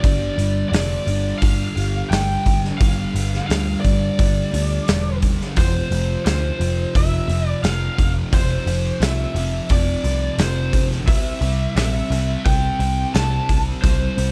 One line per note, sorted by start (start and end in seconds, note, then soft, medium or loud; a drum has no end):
0.00 0.28 G1 medium
0.00 0.70 G2 medium
0.00 0.39 D3 medium
0.00 0.37 G3 loud
0.00 0.68 D5 medium
0.00 kick loud
0.00 open hi-hat medium
0.38 0.62 G1 medium
0.38 0.71 D3 medium
0.38 0.72 G3 medium
0.38 open hi-hat medium
0.69 0.97 F1 medium
0.69 2.10 G2 medium
0.69 1.07 D3 medium
0.69 1.38 D5 medium
0.73 1.06 G3 medium
0.73 snare loud
0.73 open hi-hat medium
1.06 1.32 G1 medium
1.06 1.76 D3 medium
1.06 1.74 G3 medium
1.06 open hi-hat medium
1.38 1.66 G1 medium
1.38 2.11 F5 loud
1.38 open hi-hat medium
1.42 kick loud
1.75 2.01 G1 medium
1.75 2.10 D3 medium
1.75 2.11 G3 medium
1.75 open hi-hat medium
2.10 2.35 G1 medium
2.10 2.80 G2 medium
2.10 2.80 D3 medium
2.10 2.81 G3 medium
2.10 2.59 G5 loud
2.10 snare loud
2.10 open hi-hat medium
2.46 2.70 G1 medium
2.46 kick medium
2.46 open hi-hat medium
2.65 snare soft
2.78 3.05 G1 medium
2.78 3.48 G2 medium
2.78 3.16 D3 loud
2.78 3.45 F5 loud
2.78 kick loud
2.78 open hi-hat medium
2.82 3.14 G3 loud
3.14 3.39 G1 medium
3.14 3.48 D3 medium
3.14 3.50 G3 medium
3.14 open hi-hat medium
3.34 snare soft
3.46 3.74 D2 medium
3.46 4.18 G2 medium
3.46 3.85 D3 medium
3.46 3.80 F5 loud
3.46 open hi-hat medium
3.51 3.83 G3 medium
3.51 snare loud
3.81 4.09 G1 medium
3.81 4.50 G3 medium
3.81 5.16 D5 medium
3.81 kick medium
3.85 4.53 D3 medium
3.85 open hi-hat medium
4.19 4.43 G1 medium
4.19 kick loud
4.19 open hi-hat medium
4.52 4.78 D2 medium
4.52 4.87 D3 medium
4.52 4.88 G3 medium
4.52 open hi-hat medium
4.87 5.37 E1 medium
4.87 5.54 G2 medium
4.87 5.55 D3 medium
4.87 5.55 G3 medium
4.87 snare loud
4.87 open hi-hat medium
5.22 kick medium
5.22 open hi-hat medium
5.41 snare soft
5.56 5.81 F1 medium
5.56 6.25 F2 medium
5.56 5.92 C3 medium
5.56 5.90 F3 loud
5.56 6.24 C5 medium
5.56 kick loud
5.56 open hi-hat medium
5.91 6.15 F1 medium
5.91 6.25 C3 medium
5.91 6.26 F3 medium
5.91 open hi-hat medium
6.25 6.50 D2 loud
6.25 7.63 F2 medium
6.25 6.60 C3 medium
6.25 6.58 F3 medium
6.25 6.96 C5 medium
6.25 snare loud
6.25 open hi-hat medium
6.59 6.84 F1 medium
6.59 7.29 C3 medium
6.59 7.27 F3 medium
6.59 open hi-hat medium
6.95 7.19 F1 medium
6.95 7.48 E5 medium
6.95 kick loud
6.95 open hi-hat medium
7.28 7.53 F1 medium
7.28 7.63 C3 medium
7.28 7.64 F3 medium
7.28 open hi-hat medium
7.48 7.63 D5 medium
7.63 7.88 F1 loud
7.63 8.30 F2 medium
7.63 8.31 C3 medium
7.63 8.32 F3 medium
7.63 8.11 F5 loud
7.63 snare loud
7.63 open hi-hat medium
7.98 8.22 F1 medium
7.98 kick medium
7.98 open hi-hat medium
8.31 8.57 F1 loud
8.31 9.00 F2 medium
8.31 8.67 C3 loud
8.31 8.65 F3 loud
8.31 9.04 C5 medium
8.31 kick loud
8.31 open hi-hat medium
8.66 8.91 F1 medium
8.66 9.01 C3 medium
8.66 9.01 F3 medium
8.66 open hi-hat medium
9.00 9.25 C2 loud
9.00 9.70 F2 medium
9.00 9.36 C3 medium
9.00 9.34 F3 medium
9.00 9.66 E5 medium
9.00 snare loud
9.00 open hi-hat medium
9.35 9.59 F1 medium
9.35 10.05 C3 medium
9.35 10.03 F3 medium
9.35 open hi-hat medium
9.69 9.94 F1 medium
9.69 10.42 D5 medium
9.69 kick loud
9.69 open hi-hat medium
10.04 10.28 C2 medium
10.04 10.38 C3 medium
10.04 10.40 F3 medium
10.04 open hi-hat medium
10.38 11.08 F1 loud
10.38 11.06 F2 medium
10.38 11.06 C3 medium
10.38 11.06 F3 medium
10.38 10.87 C5 medium
10.38 snare loud
10.38 open hi-hat medium
10.73 kick medium
10.73 open hi-hat medium
10.91 snare soft
11.07 11.32 C2 medium
11.07 11.75 C3 medium
11.07 11.42 G3 medium
11.07 11.40 C4 loud
11.07 11.76 E5 loud
11.07 kick loud
11.07 open hi-hat medium
11.41 11.66 C2 medium
11.41 11.76 G3 medium
11.41 11.78 C4 medium
11.41 open hi-hat medium
11.76 12.00 A#1 loud
11.76 13.13 C3 medium
11.76 12.12 G3 medium
11.76 12.10 C4 medium
11.76 12.47 E5 medium
11.76 snare loud
11.76 open hi-hat medium
12.10 12.35 C2 loud
12.10 12.81 G3 medium
12.10 12.79 C4 medium
12.10 open hi-hat medium
12.45 12.70 C2 medium
12.45 13.14 G5 loud
12.45 kick loud
12.45 open hi-hat medium
12.79 13.04 C2 medium
12.79 13.14 G3 soft
12.79 13.15 C4 medium
12.79 open hi-hat medium
13.14 13.39 C2 medium
13.14 13.81 C3 medium
13.14 13.82 G3 medium
13.14 13.83 C4 medium
13.14 13.62 A5 loud
13.14 snare loud
13.14 open hi-hat medium
13.49 13.73 C2 medium
13.49 kick medium
13.49 open hi-hat medium
13.82 14.08 C2 loud
13.82 14.32 C3 medium
13.82 14.17 G3 medium
13.82 14.16 C4 loud
13.82 14.32 C5 medium
13.82 kick loud
13.82 open hi-hat medium
14.17 14.32 C2 medium
14.17 14.32 G3 medium
14.17 14.32 C4 medium
14.17 open hi-hat medium